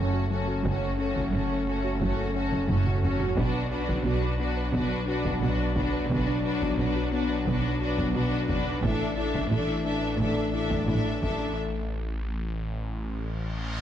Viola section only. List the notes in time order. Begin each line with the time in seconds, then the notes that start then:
Already playing: C#4
0.31 C#4
0.65 C#4
0.98 C#4
1.33 C#4
1.67 C#4
2.01 C#4
2.35 C#4
2.70 C#4
3.03 C#4
3.37 D4
3.72 D4
4.06 D4
4.40 D4
4.75 D4
5.08 D4
5.43 D4
5.77 D4
6.11 D4
6.45 D4
6.79 D4
7.13 D4
7.48 D4
7.82 D4
8.15 D4
8.49 D4
8.83 D4
9.18 D4
9.52 D4
9.86 D4
10.19 D4
10.54 D4
10.88 D4
11.23 D4